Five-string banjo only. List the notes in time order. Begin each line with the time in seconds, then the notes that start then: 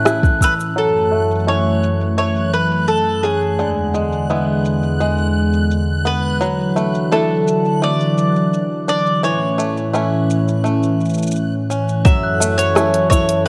Already playing: E3 A3 C#4
0.05 E4
0.76 F#3
1.12 A3
1.47 A3 C#4 E4
2.18 A3
3.24 C#4
3.59 D3
3.94 G#3
4.30 G#3 B3 E4
5.00 G#3
6.05 B3
6.41 F#3
6.76 A3
7.12 A3 D4 E4
7.82 A3
8.88 D4
9.23 E3
9.58 A3
9.93 A3 C#4 E4
10.64 A3
11.70 C#4
12.05 F#3
12.40 A3
12.75 A3 C#4 E4
13.11 E4